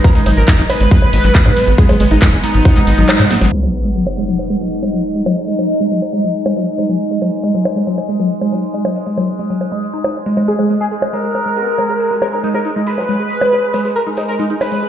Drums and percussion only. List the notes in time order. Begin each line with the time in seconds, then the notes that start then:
0.04 kick, closed hi-hat, ride
0.15 open hi-hat
0.26 open hi-hat, ride, tambourine, high bongo
0.37 closed hi-hat, tambourine
0.48 kick, clap, closed hi-hat, ride
0.69 open hi-hat, ride, tambourine, high bongo
0.80 closed hi-hat, tambourine
0.91 kick, closed hi-hat, ride, tambourine
1.02 high bongo
1.13 open hi-hat, ride, tambourine
1.24 clap, closed hi-hat, tambourine
1.35 kick, clap, closed hi-hat, ride, tambourine
1.46 high bongo
1.57 open hi-hat, ride, tambourine
1.67 closed hi-hat, tambourine
1.78 kick, closed hi-hat, ride, tambourine
1.89 open hi-hat, high bongo
2.00 open hi-hat, ride, tambourine
2.11 closed hi-hat, tambourine
2.22 kick, clap, closed hi-hat, ride, high bongo
2.44 open hi-hat, ride, tambourine
2.54 closed hi-hat, tambourine
2.65 kick, closed hi-hat, ride, tambourine, high bongo
2.76 clap
2.87 open hi-hat, ride, tambourine
2.97 closed hi-hat, tambourine
3.09 clap, open hi-hat, ride, tambourine, high bongo
3.30 snare, open hi-hat, ride, tambourine
3.41 snare, closed hi-hat, tambourine, high bongo
3.52 tambourine
3.63 high bongo
3.85 tambourine
3.96 tambourine
4.07 high bongo
4.17 tambourine
4.28 tambourine
4.39 tambourine, high bongo
4.61 tambourine
4.73 tambourine
4.83 tambourine, high bongo
5.05 tambourine
5.16 tambourine
5.26 tambourine, high bongo
5.47 tambourine
5.59 tambourine, high bongo
5.70 tambourine
5.92 tambourine
6.02 tambourine, high bongo
6.13 tambourine
6.35 tambourine
6.46 tambourine, high bongo
6.56 tambourine
6.78 tambourine, high bongo
6.90 tambourine
7.00 tambourine
7.22 tambourine, high bongo
7.32 tambourine
7.44 tambourine
7.65 tambourine, high bongo
7.76 tambourine
7.87 tambourine
7.98 high bongo
8.09 tambourine
8.20 tambourine
8.31 tambourine
8.41 high bongo
8.53 tambourine
8.63 tambourine
8.74 tambourine
8.85 high bongo
8.96 tambourine
9.06 tambourine
9.17 tambourine, high bongo
9.39 tambourine
9.50 tambourine
9.61 tambourine, high bongo
9.83 tambourine
9.93 tambourine
10.04 tambourine, high bongo
10.26 tambourine
10.36 tambourine, high bongo
10.47 tambourine
10.59 high bongo
10.70 tambourine
10.81 tambourine
10.92 tambourine
11.02 high bongo
11.13 tambourine
11.25 tambourine
11.35 tambourine, high bongo
11.56 tambourine
11.68 tambourine
11.78 tambourine, high bongo
12.00 tambourine
12.11 tambourine
12.22 tambourine, high bongo
12.44 tambourine
12.54 tambourine, high bongo
12.65 tambourine
12.87 tambourine
12.98 tambourine, high bongo
13.09 tambourine
13.30 tambourine
13.41 tambourine, high bongo
13.52 tambourine
13.74 tambourine, high bongo
13.85 tambourine
13.96 tambourine
14.17 tambourine, high bongo
14.28 tambourine
14.40 tambourine
14.61 tambourine, high bongo
14.72 tambourine
14.83 tambourine